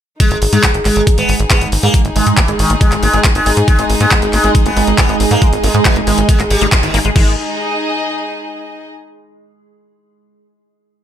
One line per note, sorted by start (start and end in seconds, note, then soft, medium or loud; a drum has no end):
0.20 0.37 G#3 medium
0.20 0.43 G#3 medium
0.20 7.15 D#4 medium
0.20 kick loud
0.20 closed hi-hat loud
0.31 0.37 G#1 medium
0.31 closed hi-hat medium
0.42 0.48 G#1 loud
0.42 0.47 A#3 medium
0.42 open hi-hat loud
0.53 0.59 G#2 medium
0.53 0.69 G#3 medium
0.53 0.76 G#3 medium
0.53 closed hi-hat medium
0.63 kick loud
0.63 clap loud
0.63 closed hi-hat loud
0.74 0.80 G#1 medium
0.74 0.80 A#3 medium
0.74 closed hi-hat medium
0.85 0.91 G#1 medium
0.85 1.02 G#3 medium
0.85 1.08 G#3 medium
0.85 clap soft
0.85 open hi-hat medium
0.96 1.02 G#1 medium
0.96 7.16 G#4 medium
0.96 closed hi-hat medium
1.07 1.12 A#3 medium
1.07 kick loud
1.07 closed hi-hat medium
1.18 1.24 G#1 medium
1.18 1.41 G#3 medium
1.18 1.34 B3 medium
1.18 closed hi-hat medium
1.29 1.35 G#1 medium
1.29 open hi-hat loud
1.40 1.46 G#1 loud
1.40 1.45 A#3 medium
1.40 closed hi-hat medium
1.50 1.74 G#3 medium
1.50 1.67 B3 medium
1.50 kick loud
1.50 clap loud
1.50 closed hi-hat loud
1.61 1.67 G#1 medium
1.61 closed hi-hat medium
1.72 1.78 G#1 loud
1.72 1.77 A#3 medium
1.72 7.16 D#5 medium
1.72 open hi-hat medium
1.83 1.89 G#2 medium
1.83 2.06 G#3 medium
1.83 2.00 A#3 medium
1.83 closed hi-hat medium
1.94 kick loud
1.94 closed hi-hat medium
2.05 2.11 G#1 medium
2.05 2.10 A#3 medium
2.05 closed hi-hat medium
2.16 2.22 G#1 loud
2.16 2.39 G#3 medium
2.16 2.27 G#3 medium
2.16 open hi-hat loud
2.27 2.33 G#2 medium
2.27 closed hi-hat medium
2.37 2.48 E3 medium
2.37 2.43 A#3 medium
2.37 kick loud
2.37 clap loud
2.37 closed hi-hat medium
2.48 2.54 G#1 medium
2.48 2.72 G#3 medium
2.48 closed hi-hat medium
2.59 2.65 G#1 loud
2.59 2.70 D#3 medium
2.59 open hi-hat medium
2.70 2.76 G#1 medium
2.70 2.75 A#3 medium
2.70 closed hi-hat medium
2.81 3.04 G#3 medium
2.81 2.92 G#3 medium
2.81 kick loud
2.81 closed hi-hat medium
2.92 2.98 G#1 medium
2.92 clap soft
2.92 closed hi-hat medium
3.03 3.09 G#1 loud
3.03 3.19 G#3 medium
3.03 3.08 A#3 medium
3.03 open hi-hat loud
3.13 3.20 G#1 medium
3.13 3.37 G#3 medium
3.13 closed hi-hat medium
3.24 kick loud
3.24 clap loud
3.24 closed hi-hat medium
3.35 3.41 G#1 medium
3.35 3.52 G#3 medium
3.35 3.40 A#3 medium
3.35 closed hi-hat medium
3.46 3.52 G#1 medium
3.46 3.69 G#3 medium
3.46 open hi-hat loud
3.57 3.63 G#2 medium
3.57 closed hi-hat medium
3.68 3.84 G#3 loud
3.68 7.17 G#3 medium
3.68 3.73 A#3 medium
3.68 7.17 G#4 medium
3.68 kick loud
3.68 closed hi-hat medium
3.79 3.85 G#1 medium
3.79 4.02 G#3 medium
3.79 closed hi-hat medium
3.90 3.96 G#1 loud
3.90 open hi-hat loud
4.00 4.06 G#2 loud
4.00 4.17 G#3 medium
4.00 4.06 A#3 medium
4.00 closed hi-hat medium
4.11 4.35 G#3 medium
4.11 kick loud
4.11 clap loud
4.11 closed hi-hat medium
4.22 4.28 G#1 medium
4.22 closed hi-hat medium
4.33 4.39 G#1 loud
4.33 4.50 G#3 medium
4.33 4.38 A#3 medium
4.33 clap soft
4.33 open hi-hat medium
4.44 4.50 G#1 medium
4.44 4.67 G#3 medium
4.44 closed hi-hat medium
4.55 kick loud
4.55 closed hi-hat medium
4.66 4.72 G#1 medium
4.66 4.71 A#3 medium
4.66 4.82 B3 medium
4.66 closed hi-hat soft
4.77 4.83 G#1 medium
4.77 5.00 G#3 medium
4.77 open hi-hat loud
4.87 4.93 G#1 medium
4.87 closed hi-hat medium
4.98 5.04 A#3 medium
4.98 5.15 B3 medium
4.98 kick loud
4.98 clap loud
4.98 closed hi-hat medium
5.09 5.15 G#1 medium
5.09 5.32 G#3 medium
5.09 closed hi-hat medium
5.20 5.26 G#1 loud
5.20 open hi-hat loud
5.31 5.37 G#2 medium
5.31 5.36 A#3 medium
5.31 5.47 A#3 medium
5.31 closed hi-hat medium
5.42 5.65 G#3 medium
5.42 kick loud
5.42 closed hi-hat medium
5.53 5.59 G#1 medium
5.53 closed hi-hat soft
5.63 5.69 G#1 loud
5.63 5.75 G#3 medium
5.63 5.69 A#3 medium
5.63 open hi-hat loud
5.74 5.80 G#2 medium
5.74 5.98 G#3 medium
5.74 closed hi-hat medium
5.85 5.96 E3 medium
5.85 kick loud
5.85 clap loud
5.85 closed hi-hat medium
5.96 6.02 G#1 medium
5.96 6.01 A#3 medium
5.96 closed hi-hat soft
6.07 6.13 G#1 loud
6.07 6.18 D#3 medium
6.07 6.30 G#3 medium
6.07 open hi-hat medium
6.18 6.24 G#1 medium
6.18 closed hi-hat medium
6.29 6.40 G#3 medium
6.29 6.34 A#3 medium
6.29 kick loud
6.29 closed hi-hat medium
6.40 6.46 G#1 medium
6.40 6.43 G#3 medium
6.40 clap soft
6.40 closed hi-hat soft
6.50 6.56 G#1 medium
6.50 6.67 G3 medium
6.50 open hi-hat loud
6.61 6.67 G#1 medium
6.61 6.67 G#3 loud
6.61 closed hi-hat medium
6.72 6.77 G#3 medium
6.72 kick loud
6.72 clap loud
6.72 closed hi-hat medium
6.83 6.89 G#1 medium
6.83 7.00 D#3 loud
6.83 closed hi-hat medium
6.94 7.00 G#1 loud
6.94 6.99 A#3 loud
6.94 open hi-hat medium
7.05 7.11 G#1 medium
7.05 7.10 G#3 medium
7.05 closed hi-hat medium
7.16 7.36 G#1 loud
7.16 7.32 D#3 medium
7.16 7.36 G#3 medium
7.16 8.86 D#4 medium
7.16 kick loud
7.16 crash medium
7.22 8.86 G#4 medium
7.29 8.86 D#5 medium